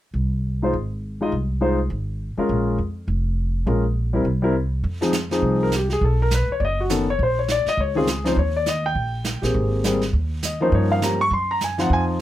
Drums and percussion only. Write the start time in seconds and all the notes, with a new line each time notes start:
4.84 brush sweep, kick
5.02 snare
5.13 snare, hi-hat pedal
5.31 snare
5.42 brush sweep, kick
5.72 snare, hi-hat pedal
5.90 snare
6.01 brush sweep, kick
6.31 snare, hi-hat pedal
6.60 brush sweep, kick
6.90 snare, hi-hat pedal
7.19 brush sweep, kick
7.48 snare, hi-hat pedal
7.66 snare
7.78 brush sweep, kick
8.07 snare, hi-hat pedal
8.25 snare
8.37 brush sweep, kick
8.66 snare, hi-hat pedal
8.95 brush sweep, kick
9.24 snare, hi-hat pedal
9.43 snare
9.54 brush sweep, kick
9.84 snare, hi-hat pedal
10.01 snare
10.13 brush sweep, kick
10.43 snare, hi-hat pedal
10.72 brush sweep, kick
11.02 snare, hi-hat pedal
11.31 brush sweep, kick
11.61 snare, hi-hat pedal
11.78 snare
11.90 brush sweep, kick